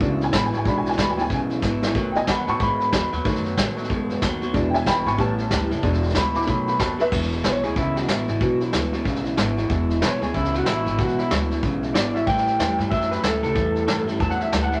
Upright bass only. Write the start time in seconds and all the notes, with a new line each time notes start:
0.01 C#2
0.33 A1
0.53 G#1
0.65 B1
0.98 D2
1.30 B1
1.62 G#1
1.95 B1
2.27 F#2
2.48 A2
2.60 G#2
2.92 E2
3.12 D#2
3.25 F#2
3.58 A2
3.90 F#2
4.22 D#2
4.55 E1
4.86 B1
5.06 G#1
5.18 A1
5.51 D2
5.71 F#1
5.83 E1
6.15 D2
6.47 B1
6.80 D#2
7.12 E1
7.44 B1
7.63 D2
7.76 C#2
8.08 A1
8.28 G#1
8.41 B1
8.73 D2
9.05 B1
9.38 G#1
9.70 E1
10.02 B1
10.22 D2
10.34 C#2
10.67 A1
10.86 G#1
10.99 B1
11.31 D2
11.63 B1
11.95 G#1
12.27 A1
12.59 E2
12.79 G2
12.92 F#2
13.23 D2
13.43 C#2
13.55 E2
13.88 G2
14.20 E2
14.53 D2